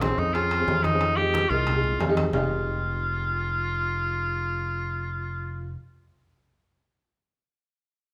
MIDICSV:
0, 0, Header, 1, 5, 480
1, 0, Start_track
1, 0, Key_signature, -4, "minor"
1, 0, Tempo, 332042
1, 1454, Time_signature, 4, 2, 24, 8
1, 11761, End_track
2, 0, Start_track
2, 0, Title_t, "Tenor saxophone"
2, 0, Program_c, 0, 66
2, 18, Note_on_c, 0, 60, 83
2, 266, Note_on_c, 0, 63, 86
2, 287, Note_off_c, 0, 60, 0
2, 483, Note_on_c, 0, 65, 102
2, 505, Note_off_c, 0, 63, 0
2, 1204, Note_on_c, 0, 63, 99
2, 1226, Note_off_c, 0, 65, 0
2, 1683, Note_on_c, 0, 67, 110
2, 1704, Note_off_c, 0, 63, 0
2, 2159, Note_on_c, 0, 65, 97
2, 2180, Note_off_c, 0, 67, 0
2, 3126, Note_off_c, 0, 65, 0
2, 3389, Note_on_c, 0, 65, 83
2, 8322, Note_off_c, 0, 65, 0
2, 11761, End_track
3, 0, Start_track
3, 0, Title_t, "Upright piano"
3, 0, Program_c, 1, 0
3, 23, Note_on_c, 1, 61, 72
3, 26, Note_on_c, 1, 60, 77
3, 31, Note_on_c, 1, 68, 89
3, 355, Note_off_c, 1, 61, 0
3, 356, Note_off_c, 1, 60, 0
3, 359, Note_off_c, 1, 68, 0
3, 502, Note_on_c, 1, 60, 74
3, 508, Note_on_c, 1, 61, 70
3, 512, Note_on_c, 1, 68, 89
3, 751, Note_off_c, 1, 60, 0
3, 753, Note_off_c, 1, 61, 0
3, 755, Note_off_c, 1, 68, 0
3, 865, Note_on_c, 1, 60, 81
3, 873, Note_on_c, 1, 61, 72
3, 875, Note_on_c, 1, 68, 79
3, 1196, Note_off_c, 1, 60, 0
3, 1200, Note_off_c, 1, 61, 0
3, 1201, Note_off_c, 1, 68, 0
3, 1350, Note_on_c, 1, 60, 82
3, 1355, Note_on_c, 1, 61, 76
3, 1361, Note_on_c, 1, 68, 84
3, 1463, Note_off_c, 1, 60, 0
3, 1465, Note_off_c, 1, 61, 0
3, 1468, Note_off_c, 1, 68, 0
3, 1710, Note_on_c, 1, 56, 74
3, 1715, Note_on_c, 1, 63, 76
3, 1721, Note_on_c, 1, 67, 88
3, 2038, Note_off_c, 1, 56, 0
3, 2041, Note_off_c, 1, 63, 0
3, 2044, Note_off_c, 1, 67, 0
3, 2189, Note_on_c, 1, 56, 68
3, 2189, Note_on_c, 1, 63, 68
3, 2191, Note_on_c, 1, 70, 79
3, 2434, Note_off_c, 1, 56, 0
3, 2434, Note_off_c, 1, 63, 0
3, 2435, Note_off_c, 1, 70, 0
3, 2539, Note_on_c, 1, 56, 62
3, 2544, Note_on_c, 1, 63, 53
3, 2547, Note_on_c, 1, 68, 74
3, 2873, Note_off_c, 1, 56, 0
3, 2875, Note_off_c, 1, 63, 0
3, 2876, Note_off_c, 1, 68, 0
3, 2908, Note_on_c, 1, 80, 65
3, 3018, Note_on_c, 1, 56, 92
3, 3023, Note_on_c, 1, 63, 88
3, 3023, Note_on_c, 1, 67, 97
3, 3125, Note_off_c, 1, 80, 0
3, 3136, Note_on_c, 1, 75, 62
3, 3268, Note_off_c, 1, 56, 0
3, 3271, Note_off_c, 1, 63, 0
3, 3271, Note_off_c, 1, 67, 0
3, 3354, Note_on_c, 1, 56, 77
3, 3358, Note_off_c, 1, 75, 0
3, 3382, Note_on_c, 1, 63, 69
3, 3416, Note_on_c, 1, 67, 85
3, 8297, Note_off_c, 1, 56, 0
3, 8325, Note_off_c, 1, 63, 0
3, 8359, Note_off_c, 1, 67, 0
3, 11761, End_track
4, 0, Start_track
4, 0, Title_t, "Fingered electric bass"
4, 0, Program_c, 2, 33
4, 0, Note_on_c, 2, 34, 78
4, 174, Note_off_c, 2, 34, 0
4, 259, Note_on_c, 2, 41, 95
4, 927, Note_off_c, 2, 41, 0
4, 975, Note_on_c, 2, 41, 80
4, 2093, Note_off_c, 2, 41, 0
4, 2175, Note_on_c, 2, 36, 88
4, 2844, Note_off_c, 2, 36, 0
4, 2880, Note_on_c, 2, 41, 85
4, 3311, Note_off_c, 2, 41, 0
4, 3369, Note_on_c, 2, 29, 88
4, 8312, Note_off_c, 2, 29, 0
4, 11761, End_track
5, 0, Start_track
5, 0, Title_t, "Drums"
5, 21, Note_on_c, 9, 65, 94
5, 21, Note_on_c, 9, 66, 57
5, 31, Note_on_c, 9, 63, 95
5, 166, Note_off_c, 9, 65, 0
5, 166, Note_off_c, 9, 66, 0
5, 175, Note_off_c, 9, 63, 0
5, 272, Note_on_c, 9, 63, 35
5, 416, Note_off_c, 9, 63, 0
5, 505, Note_on_c, 9, 63, 33
5, 505, Note_on_c, 9, 65, 72
5, 650, Note_off_c, 9, 63, 0
5, 650, Note_off_c, 9, 65, 0
5, 740, Note_on_c, 9, 65, 89
5, 746, Note_on_c, 9, 63, 34
5, 884, Note_off_c, 9, 65, 0
5, 890, Note_off_c, 9, 63, 0
5, 980, Note_on_c, 9, 66, 84
5, 987, Note_on_c, 9, 63, 81
5, 1125, Note_off_c, 9, 66, 0
5, 1132, Note_off_c, 9, 63, 0
5, 1217, Note_on_c, 9, 65, 72
5, 1229, Note_on_c, 9, 63, 76
5, 1362, Note_off_c, 9, 65, 0
5, 1374, Note_off_c, 9, 63, 0
5, 1457, Note_on_c, 9, 65, 84
5, 1471, Note_on_c, 9, 63, 36
5, 1601, Note_off_c, 9, 65, 0
5, 1616, Note_off_c, 9, 63, 0
5, 1712, Note_on_c, 9, 63, 36
5, 1856, Note_off_c, 9, 63, 0
5, 1936, Note_on_c, 9, 65, 74
5, 1936, Note_on_c, 9, 66, 62
5, 1948, Note_on_c, 9, 63, 98
5, 2081, Note_off_c, 9, 65, 0
5, 2081, Note_off_c, 9, 66, 0
5, 2093, Note_off_c, 9, 63, 0
5, 2187, Note_on_c, 9, 63, 36
5, 2331, Note_off_c, 9, 63, 0
5, 2411, Note_on_c, 9, 65, 87
5, 2419, Note_on_c, 9, 63, 34
5, 2419, Note_on_c, 9, 64, 82
5, 2555, Note_off_c, 9, 65, 0
5, 2564, Note_off_c, 9, 63, 0
5, 2564, Note_off_c, 9, 64, 0
5, 2656, Note_on_c, 9, 63, 32
5, 2656, Note_on_c, 9, 64, 69
5, 2801, Note_off_c, 9, 63, 0
5, 2801, Note_off_c, 9, 64, 0
5, 2895, Note_on_c, 9, 63, 76
5, 2898, Note_on_c, 9, 65, 64
5, 2898, Note_on_c, 9, 66, 83
5, 3040, Note_off_c, 9, 63, 0
5, 3042, Note_off_c, 9, 65, 0
5, 3042, Note_off_c, 9, 66, 0
5, 3131, Note_on_c, 9, 63, 76
5, 3139, Note_on_c, 9, 65, 94
5, 3276, Note_off_c, 9, 63, 0
5, 3283, Note_off_c, 9, 65, 0
5, 3370, Note_on_c, 9, 64, 92
5, 3374, Note_on_c, 9, 66, 89
5, 3515, Note_off_c, 9, 64, 0
5, 3518, Note_off_c, 9, 66, 0
5, 11761, End_track
0, 0, End_of_file